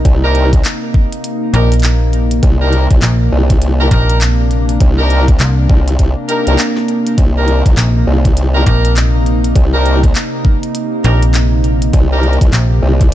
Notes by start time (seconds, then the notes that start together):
Already playing: C3 A#3 D#4
0.05 C2, kick, closed hi-hat
0.23 D4 D#4 G4 A#4
0.35 closed hi-hat
0.53 kick, closed hi-hat
0.65 clap, closed hi-hat
0.94 kick
1.12 closed hi-hat
1.24 closed hi-hat
1.53 A#1 D4 D#4 G4 A#4, closed hi-hat
1.72 closed hi-hat
1.74 closed hi-hat
1.80 clap, closed hi-hat
1.83 closed hi-hat
2.13 closed hi-hat
2.31 closed hi-hat
2.43 C2 D4, kick, closed hi-hat
2.61 D4 D#4 G4 A#4
2.73 closed hi-hat
2.91 C2, kick, closed hi-hat
3.02 A#1, clap, closed hi-hat
3.32 C2
3.50 kick, closed hi-hat
3.62 closed hi-hat
3.80 D4 D#4 G4 A#4
3.91 A#1 D4 D#4 G4 A#4, kick, closed hi-hat
4.10 closed hi-hat
4.21 clap, closed hi-hat
4.51 closed hi-hat
4.69 closed hi-hat
4.80 C2, kick, closed hi-hat
4.98 D4 D#4 G4 A#4
5.10 closed hi-hat
5.28 kick, closed hi-hat
5.40 C2, clap, closed hi-hat
5.70 C2, kick
5.88 closed hi-hat
5.99 C2, kick, closed hi-hat
6.29 D4 D#4 G4 A#4, closed hi-hat
6.47 C2 D4 D#4 G4 A#4, closed hi-hat
6.59 clap, closed hi-hat
6.77 snare
6.88 closed hi-hat
7.07 closed hi-hat
7.18 C2 D#4, kick, closed hi-hat
7.36 D4 D#4 G4 A#4
7.48 closed hi-hat
7.66 C2, kick, closed hi-hat
7.77 A#1, clap, closed hi-hat
8.07 C2
8.25 kick, closed hi-hat
8.37 closed hi-hat
8.55 D4 D#4 G4 A#4
8.66 A#1 D4 D#4 G4 A#4, kick, closed hi-hat
8.85 closed hi-hat
8.97 clap, closed hi-hat
9.26 closed hi-hat
9.44 closed hi-hat
9.56 C2, kick, closed hi-hat
9.74 D4 D#4 G4 A#4
9.86 closed hi-hat
10.03 kick, closed hi-hat
10.15 clap, closed hi-hat
10.45 kick
10.63 closed hi-hat
10.75 closed hi-hat
11.04 A#1 D4 D#4 G4 A#4, closed hi-hat
11.23 closed hi-hat
11.34 clap, closed hi-hat
11.64 closed hi-hat
11.82 closed hi-hat
11.93 C2 G4, kick, closed hi-hat
12.12 D4 D#4 G4 A#4
12.23 closed hi-hat
12.33 closed hi-hat
12.41 C2, kick, closed hi-hat
12.43 closed hi-hat
12.53 A#1, clap, closed hi-hat
12.83 C2
13.01 kick, closed hi-hat